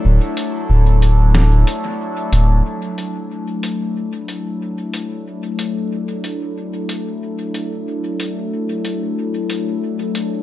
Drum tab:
HH |-x-x-x-x|-x-x-x-x|-x-x-x-x|-x-x-x-x|
SD |----o---|--------|--------|--------|